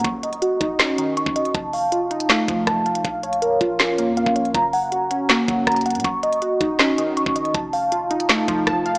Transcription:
<<
  \new Staff \with { instrumentName = "Synth keys" } { \time 4/4 \key ees \dorian \tempo 4 = 160 des'''8 ees''8 ges'8 ees'8 des'8 ees8 des'''8 ees''8 | a''8 f''8 f'8 ees'8 a8 f8 a''8 f''8 | f''8 des''8 bes'8 f'8 des'8 bes8 f''8 des''8 | bes''8 ges''8 ges'8 des'8 bes8 ges8 bes''8 ges''8 |
des'''8 ees''8 ges'8 ees'8 des'8 ees8 des'''8 ees''8 | a''8 f''8 f'8 ees'8 a8 f8 a''8 f''8 | }
  \new Staff \with { instrumentName = "808-style bass" } { \clef bass \time 4/4 \key ees \dorian ees,,4 r8 ees,,4~ ees,,16 des,,8 ees,,8. | f,,2~ f,,8 f,,8 f,,4 | bes,,4. bes,,4~ bes,,16 f,8 bes,,8. | ges,,2~ ges,,8 ges,,8 ges,,8. bes,16 |
ees,,4 r8 ees,,4~ ees,,16 des,,8 ees,,8. | f,,2~ f,,8 f,,8 f,,4 | }
  \new DrumStaff \with { instrumentName = "Drums" } \drummode { \time 4/4 <hh bd>8 hh16 hh16 hh8 <hh bd>8 <hc hh sn>8 hh8 hh16 bd16 hh16 hh16 | <hh bd>8 hho8 hh8 hh16 hh16 <hc hh sn>8 <hh bd>8 <hh bd ss>8 hh16 hh16 | <hh bd>8 hh16 hh16 hh8 <hh bd>8 <hc hh sn>8 hh8 hh16 bd16 hh16 hh16 | <hh bd>8 hho8 hh8 hh8 <hc hh sn>8 <hh bd>8 <hh bd ss>32 hh32 hh32 hh32 hh32 hh32 hh32 hh32 |
<hh bd>8 hh16 hh16 hh8 <hh bd>8 <hc hh sn>8 hh8 hh16 bd16 hh16 hh16 | <hh bd>8 hho8 hh8 hh16 hh16 <hc hh sn>8 <hh bd>8 <hh bd ss>8 hh16 hh16 | }
>>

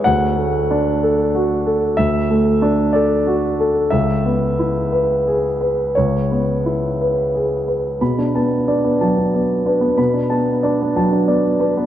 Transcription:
\new Staff \with { instrumentName = "Grand piano" } { \time 6/8 \key b \dorian \tempo 4. = 61 << { fis''2. | e''4. d''8 r4 | e''2. | cis''2~ cis''8 r8 |
b''8 a''8 d''8 a''8 d''8 b'8 | b''8 a''8 d''8 a''8 d''8 b'8 | } \\ { d,8 a8 d'8 a'8 fis'8 a'8 | d,8 a8 d'8 a'8 fis'8 a'8 | cis,8 b8 e'8 b'8 gis'8 b'8 | cis,8 b8 e'8 b'8 gis'8 b'8 |
b,16 d'16 b8 d'16 b16 fis16 d'16 b8 d'16 b16 | b,16 d'16 b8 d'16 b16 fis16 d'16 b8 d'16 b16 | } >> }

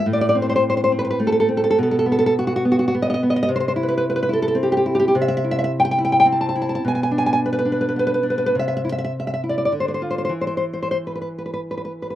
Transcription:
\new Staff \with { instrumentName = "Nylon-string guitar" } { \time 3/4 \key c \lydian \tempo 4 = 106 << { r32 d''32 d''32 d''32 r32 c''32 c''32 c''32 r32 c''32 c''32 c''32 r32 b'32 b'32 b'32 r32 a'32 a'32 a'32 r32 a'32 a'32 a'32 | r32 a'32 a'32 a'32 r32 a'32 a'32 a'32 r32 fis'32 fis'32 fis'32 r32 fis'32 fis'32 fis'32 r32 dis''32 dis''32 dis''32 r32 dis''32 dis''32 dis''32 | r32 c''32 c''32 c''32 r32 b'32 b'32 b'32 r32 b'32 b'32 b'32 r32 a'32 a'32 a'32 r32 g'32 g'32 g'32 r32 g'32 g'32 g'32 | \key c \major r32 e''32 e''32 e''32 r32 e''32 e''32 e''32 r32 g''32 g''32 g''32 r32 g''32 g''32 g''32 r32 a''32 a''32 a''32 r32 a''32 a''32 a''32 |
r32 gis''32 gis''32 gis''32 r32 gis''32 gis''32 gis''32 r32 b'32 b'32 b'32 r32 b'32 b'32 b'32 r32 b'32 b'32 b'32 r32 b'32 b'32 b'32 | r32 e''32 e''32 e''32 r32 e''32 e''32 e''32 r32 e''32 e''32 e''32 r32 d''32 d''32 d''32 r32 c''32 c''32 c''32 r32 c''32 c''32 c''32 | r32 c''32 c''32 c''32 r32 c''32 c''32 c''32 r32 b'32 b'32 b'32 r32 b'32 b'32 b'32 r32 b'32 b'32 b'32 r32 b'32 b'32 r32 | } \\ { a,8 c'4 c'8 a8 c'8 | b,8 b4 b8 b8 b8 | c8 e'4 e'8 c'8 e'8 | c8 e'4 e'8 c'8 e'8 |
b,8 d'4 d'8 b8 d'8 | c8 e'4 e'8 d8 f'8 | e2. | } >> }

